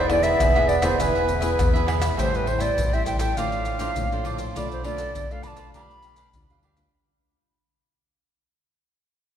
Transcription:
Already playing: fingered electric bass E1, nylon-string guitar E3, trombone B3
0.10 nylon-string guitar B3 E4 G#4, flute D5, muted cavaquinho stroke, pandeiro, tamborim
0.23 cavaquinho G#4 B4 E5, flute E5, pandeiro, maracas
0.40 fingered electric bass E1, nylon-string guitar B2, cavaquinho E4 G#4 B4 E5, pandeiro, tamborim, maracas, surdo
0.55 nylon-string guitar B3 E4 G#4, cavaquinho G#4 B4 E5, pandeiro, tamborim, maracas
0.68 flute D5, muted cavaquinho stroke, pandeiro
0.82 fingered electric bass E1, nylon-string guitar B3 E4 G#4, cavaquinho G#4 B4 E5, flute C5, pandeiro, tamborim, maracas
0.99 fingered electric bass E1, nylon-string guitar E3 B3 E4 G#4, cavaquinho E4 G#4 B4 E5, flute B4, pandeiro, tamborim, maracas, surdo
1.15 fingered electric bass E1, cavaquinho G#4 B4 E5, pandeiro, maracas
1.29 pandeiro, maracas
1.41 nylon-string guitar B3 E4 G#4, cavaquinho G#4 B4 E5, pandeiro, maracas
1.59 fingered electric bass E2, nylon-string guitar B2, pandeiro, tamborim, maracas, surdo
1.74 nylon-string guitar B3 E4 G#4, cavaquinho G#4 B4 E5, pandeiro, maracas
1.86 cavaquinho E4 G#4 B4 E5, pandeiro, tamborim
2.00 cavaquinho G#4 B4 E5, pandeiro, tamborim, maracas
2.17 fingered electric bass A1, nylon-string guitar A2 G3 C4 E4, cavaquinho A4 C5 E5 G5, flute C5, pandeiro, maracas, surdo
2.34 flute B4, pandeiro, maracas
2.46 cavaquinho A4 C5 E5 G5, flute C5, pandeiro
2.58 nylon-string guitar G3 C4 E4, cavaquinho C5 E5 G5, flute D5, pandeiro, maracas
2.77 fingered electric bass A1, nylon-string guitar E3, pandeiro, maracas, surdo
2.93 nylon-string guitar G3 C4 E4, cavaquinho C5 E5 G5, flute E5, pandeiro, maracas
3.05 fingered electric bass A1, cavaquinho A4 C5 E5 G5, flute G5, pandeiro, maracas, surdo
3.19 cavaquinho A4 C5 E5 G5, flute G5, pandeiro, maracas
3.37 fingered electric bass A1, nylon-string guitar A2 F3 C4 D4, cavaquinho F4 A4 C5 D5, flute F5, pandeiro, maracas, surdo
3.52 pandeiro, maracas
3.65 cavaquinho F4 A4 C5 D5, pandeiro, maracas
3.79 nylon-string guitar F3 C4 D4, cavaquinho F4 A4 C5 D5, pandeiro, maracas
3.96 fingered electric bass A#1, nylon-string guitar A2, pandeiro, maracas, surdo
4.12 nylon-string guitar F3 C4 D4, cavaquinho A4 C5 D5, pandeiro, maracas
4.24 cavaquinho F4 A4 C5 D5, pandeiro
4.38 cavaquinho A4 C5 D5, pandeiro, maracas
4.55 fingered electric bass B1, nylon-string guitar B2 A3 D4 F4, cavaquinho F4 A4 B4 D5, flute D5, pandeiro, maracas, surdo
4.72 flute C5, pandeiro, maracas
4.84 nylon-string guitar A3 D4 F4, cavaquinho F4 A4 B4 D5, flute D5, pandeiro
4.97 cavaquinho A4 B4 D5, pandeiro, maracas
5.15 fingered electric bass B1, nylon-string guitar B2, pandeiro, maracas, surdo
5.30 nylon-string guitar A3 D4 F4, cavaquinho A4 B4 D5, flute F5, pandeiro, maracas
5.43 fingered electric bass B1, cavaquinho F4 A4 B4 D5, flute B5, pandeiro, maracas, surdo
5.48 flute A5
5.57 cavaquinho F4 A4 B4 D5, pandeiro, maracas
5.74 fingered electric bass B1, nylon-string guitar B2 G3 D4 F4, cavaquinho D4 G4 B4 F5, flute B5, pandeiro, maracas, surdo
5.91 pandeiro, maracas
6.02 cavaquinho D4 G4 B4 F5, pandeiro, maracas
6.16 cavaquinho D4 G4 B4 F5, pandeiro, maracas
6.33 fingered electric bass D2, nylon-string guitar B2 G3 D4 F4, pandeiro, maracas, surdo
6.50 nylon-string guitar G3 D4 F4, cavaquinho G4 B4 F5, pandeiro, maracas
6.63 cavaquinho D4 G4 B4 F5, pandeiro
6.77 nylon-string guitar G3 D4 F4, cavaquinho G4 B4 F5, pandeiro, maracas

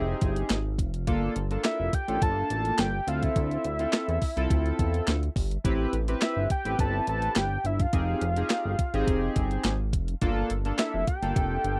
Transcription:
Already playing: analog synth bass F1, analog polysynth C4 D#4 G4 G#4
0.00 analog synth lead E5
0.21 analog synth bass G1, kick, closed hi-hat
0.36 closed hi-hat
0.50 analog synth bass G#1, snare, clap, closed hi-hat
0.79 analog synth bass F1, kick, closed hi-hat
0.94 closed hi-hat
1.07 analog synth bass G1, analog polysynth A#3 D4 F4 A4, kick, closed hi-hat
1.36 analog synth bass G1, closed hi-hat
1.51 analog polysynth A#3 D4 F4 A4, closed hi-hat
1.64 analog synth lead E5, snare, clap, closed hi-hat
1.80 analog synth bass F1
1.93 analog synth lead G5, kick, closed hi-hat
2.08 analog synth bass A1, analog polysynth A3 D4 F4 A4, closed hi-hat
2.14 analog polysynth A#3
2.22 analog synth bass G1, analog synth lead A5, kick, closed hi-hat
2.50 analog synth bass A1, analog synth lead A5, closed hi-hat
2.65 closed hi-hat
2.78 analog synth bass G1, analog synth lead G5, snare, clap, closed hi-hat
3.07 analog synth bass D2, analog polysynth C4 E4 F4 A4, analog synth lead F5, closed hi-hat
3.23 analog synth lead E5, kick, closed hi-hat
3.36 analog synth bass D2, kick, closed hi-hat
3.51 closed hi-hat
3.64 analog synth bass D2, closed hi-hat
3.79 analog polysynth C4 E4 F4 A4, closed hi-hat
3.93 snare, clap, closed hi-hat
4.08 analog synth bass E2, closed hi-hat
4.22 kick, open hi-hat
4.36 analog synth bass C2, analog polysynth C4 E4 F4 A4, closed hi-hat
4.50 analog synth bass D2, kick, closed hi-hat
4.66 closed hi-hat
4.79 analog synth bass E2, kick, closed hi-hat
4.94 closed hi-hat
5.07 analog synth bass D2, snare, clap, closed hi-hat
5.23 closed hi-hat
5.36 analog synth bass G1, kick, open hi-hat
5.51 closed hi-hat
5.64 analog synth bass A1, analog polysynth C4 E4 G4 B4, kick, closed hi-hat
5.93 analog synth bass A1, closed hi-hat
6.08 analog polysynth C4 E4 G4 B4, closed hi-hat
6.21 analog synth lead E5, snare, clap, closed hi-hat
6.37 analog synth bass G1
6.50 analog synth lead G5, kick, closed hi-hat
6.65 analog synth bass A1, analog polysynth C4 E4 G4 B4, closed hi-hat
6.79 analog synth bass G1, analog synth lead A5, kick, closed hi-hat
7.07 analog synth bass A1, analog synth lead A5, closed hi-hat
7.22 closed hi-hat
7.35 analog synth bass G1, analog synth lead G5, snare, clap, closed hi-hat
7.64 analog synth bass G1, analog synth lead E5, closed hi-hat
7.79 analog synth lead F5, kick, closed hi-hat
7.93 analog synth bass F1, analog polysynth C4 D#4 G4 G#4, kick, closed hi-hat
8.21 analog synth bass F1, closed hi-hat
8.36 analog polysynth C4 D#4 G4 G#4, closed hi-hat
8.50 snare, clap, closed hi-hat
8.65 analog synth bass G1
8.79 kick, closed hi-hat
8.94 analog synth bass G#1, analog polysynth C4 D#4 G4 G#4, closed hi-hat
9.07 analog synth bass F1, kick, closed hi-hat
9.36 analog synth bass G1, kick, closed hi-hat
9.51 closed hi-hat
9.64 analog synth bass G#1, snare, clap, closed hi-hat
9.93 analog synth bass F1, kick, closed hi-hat
10.08 closed hi-hat
10.21 analog synth bass G1, analog polysynth A#3 D4 F4 A4, kick, closed hi-hat
10.50 analog synth bass G1, closed hi-hat
10.65 analog polysynth A#3 D4 F4 A4, closed hi-hat
10.78 analog synth lead E5, snare, clap, closed hi-hat
10.94 analog synth bass F1
11.07 analog synth lead G5, kick, closed hi-hat
11.22 analog synth bass G1, analog polysynth A#3 D4 F4 A4, closed hi-hat
11.36 analog synth bass F1, kick, closed hi-hat
11.64 analog synth bass G1, closed hi-hat

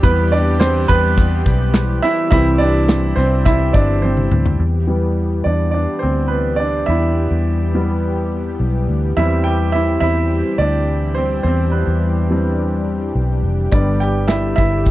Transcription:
Already playing: analog synth pad G4
0.02 fingered electric bass E2, analog synth pad E3 G3 B3, grand piano E3 G3 B3 B4, kick, closed hi-hat
0.32 grand piano D4 D5, closed hi-hat
0.60 grand piano C4 C5, snare, clap, closed hi-hat
0.88 fingered electric bass E2, grand piano B3 B4, kick, snare, closed hi-hat
1.18 kick, closed hi-hat
1.46 fingered electric bass B1, kick, closed hi-hat
1.74 snare, clap, closed hi-hat
2.02 grand piano E4 E5, closed hi-hat
2.31 fingered electric bass C2, grand piano E3 G3 C4 E4 E5, analog synth pad G3 C4, kick, closed hi-hat
2.58 grand piano D4 D5, closed hi-hat
2.89 snare, clap, closed hi-hat
3.16 fingered electric bass C2, grand piano C4 C5, snare, closed hi-hat
3.45 grand piano E4 E5, kick, closed hi-hat
3.73 fingered electric bass G1, grand piano D4 D5, kick, closed hi-hat
4.02 grand piano C4 C5, high tom
4.17 mid tom
4.31 fingered electric bass D2, mid tom
4.46 floor tom
4.59 fingered electric bass E2, analog synth pad E3 G3 B3 G4
4.87 grand piano E3 G3 B3
5.44 fingered electric bass E2, grand piano D4 D5
5.71 grand piano D4 D5
5.99 grand piano C4 C5
6.03 fingered electric bass D2
6.28 grand piano B3 B4
6.56 grand piano D4 D5
6.86 fingered electric bass E2, grand piano E4 E5
7.31 fingered electric bass E2
7.75 grand piano E3 G3 B3
8.60 fingered electric bass B1
8.88 fingered electric bass D2
9.16 fingered electric bass E2, analog synth pad E3 C4, grand piano E3 G3 C4 E4 E5
9.44 grand piano G4 G5
9.72 grand piano E4 E5
10.00 fingered electric bass E2, grand piano E4 E5
10.58 fingered electric bass D2, grand piano D4 D5
11.15 grand piano C4 C5
11.43 fingered electric bass E2, grand piano C4 C5, analog synth pad D4
11.71 grand piano B3 B4
11.87 fingered electric bass E2
12.30 grand piano E3 G3 C4
13.15 fingered electric bass B1
13.43 fingered electric bass F1
13.72 fingered electric bass G1, grand piano D3 G3 B3 D4 D5, analog synth pad D3 B3, kick, closed hi-hat
14.00 grand piano G4 G5, closed hi-hat
14.28 grand piano E4 E5, snare, clap, closed hi-hat
14.56 fingered electric bass G1, grand piano E4 E5, kick, snare, closed hi-hat
14.85 kick, closed hi-hat

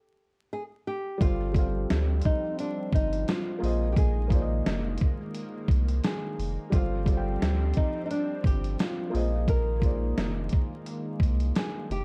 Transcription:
0.53 nylon-string guitar G#4
0.87 nylon-string guitar G4
1.18 sub bass G1, analog synth pad F3 G3 C4, felt piano G3 G4 A4, nylon-string guitar F4, kick, closed hi-hat
1.23 felt piano C5 F5
1.52 felt piano G3 G4 A4, kick, closed hi-hat
1.57 felt piano C5 F5
1.90 sub bass D2, snare, closed hi-hat
2.22 nylon-string guitar D#4, kick, closed hi-hat
2.59 nylon-string guitar D4, closed hi-hat
2.92 sub bass G1, nylon-string guitar D#4, kick, closed hi-hat
3.13 closed hi-hat
3.28 nylon-string guitar F4, snare, closed hi-hat
3.59 sub bass A#1, analog synth pad D#3 G#3 A#3, felt piano A#3 F4 G#4
3.64 felt piano C5 D#5, open hi-hat
3.92 nylon-string guitar G4
3.97 nylon-string guitar G#4, kick, closed hi-hat
4.28 felt piano A#3 F4 G#4, kick, closed hi-hat
4.33 felt piano C5 D5
4.41 felt piano D#5
4.66 sub bass F1, snare, closed hi-hat
4.98 kick, closed hi-hat
5.35 closed hi-hat
5.68 sub bass C2, kick, closed hi-hat
5.88 closed hi-hat
6.04 nylon-string guitar G#4, snare, closed hi-hat
6.38 sub bass F1, open hi-hat
6.70 sub bass G1, analog synth pad F3 G3 C4, felt piano G3 G4 A4, nylon-string guitar F4, kick, closed hi-hat
6.75 felt piano C5 F5
7.04 felt piano G3 G4 A4, kick, closed hi-hat
7.09 felt piano C5 F5
7.17 felt piano G5
7.42 sub bass D2, snare, closed hi-hat
7.74 nylon-string guitar D#4, kick, closed hi-hat
8.06 nylon-string guitar D#4
8.11 nylon-string guitar D4, closed hi-hat
8.44 sub bass G1, nylon-string guitar G4, kick, closed hi-hat
8.64 closed hi-hat
8.79 nylon-string guitar F4, snare, closed hi-hat
9.10 sub bass A#1, analog synth pad D#3 G#3 A#3, felt piano A#3 F4 G#4
9.15 felt piano C5 D#5, open hi-hat
9.48 nylon-string guitar A#4, kick, closed hi-hat
9.80 felt piano A#3 F4 G#4, kick, closed hi-hat
9.84 felt piano C5 D5
10.17 sub bass F1, snare, closed hi-hat
10.49 kick, closed hi-hat
10.86 closed hi-hat
11.20 sub bass C2, kick, closed hi-hat
11.40 closed hi-hat
11.55 nylon-string guitar G#4, snare, closed hi-hat
11.90 sub bass F1, nylon-string guitar G4, closed hi-hat

